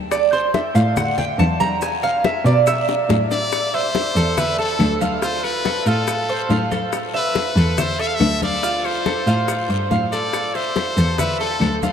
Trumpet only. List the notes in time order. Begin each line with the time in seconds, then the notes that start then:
3.32 D5
3.75 C5
4.38 B4
4.60 A4
5.23 C5
5.44 B4
5.87 A4
7.16 B4
7.79 C5
8.00 E5
8.07 F5
8.15 E5
8.44 D5
8.85 C5
10.12 D5
10.55 C5
11.18 B4
11.39 A4